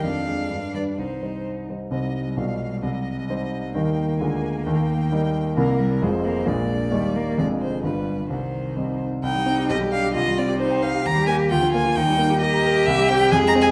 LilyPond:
<<
  \new Staff \with { instrumentName = "Violin" } { \time 2/4 \key c \minor \tempo 4 = 132 f''4. d''8 | c''4 r4 | ees''4 f''4 | ees''2 |
g''4 aes''4 | g''2 | bes'4 c''4 | d''2 |
d''8 c''8 b'4 | c''4. r8 | g''4 ees''8 f''8 | ees''8 d''8 c''8 f''8 |
bes''8 aes''8 g''8 aes''8 | g''4 ees''4 | e''8 g''8 \tuplet 3/2 { aes''8 bes''8 aes''8 } | }
  \new Staff \with { instrumentName = "Cello" } { \time 2/4 \key c \minor d'2 | ees'4. r8 | g2~ | g2 |
bes2~ | bes2 | bes8 g8 aes8 bes8 | aes4 g8 bes8 |
aes4 g4 | ees4. r8 | ees'4 g'4 | f'4 ees'4 |
g'4 f'4 | ees'4 g'4~ | g'4 aes'4 | }
  \new Staff \with { instrumentName = "Grand piano" } { \time 2/4 \key c \minor f,8 <aes d' d''>8 g,8 <g d' b'>8 | c,8 <g ees' c''>4 <g ees' c''>8 | <c, c g ees' c''>4 <b,, b, g f' d''>4 | <c, c>4 <g ees' c''>4 |
<ees, ees g ees' bes'>4 <d, d aes f' bes'>4 | <ees, ees>4 <g ees' bes'>4 | <c, c g e' bes'>4 <f,, f, aes f' aes'>4 | <bes,, bes, bes d' aes'>4 <ees, ees bes ees' g'>4 |
<f,, f, aes d' f'>4 <g,, g, g b f'>4 | <c, c>4 <g c' ees'>4 | c,16 g16 c'16 g'16 b,,16 g16 d'16 g'16 | c,16 g16 c'16 g'16 c''16 g''16 c''16 g'16 |
ees,16 g16 bes16 g'16 d,16 f16 bes16 f'16 | ees,16 g16 bes16 g'16 bes'16 bes''16 bes'16 g'16 | c,16 g16 c'16 g'16 f,16 aes16 c'16 aes'16 | }
>>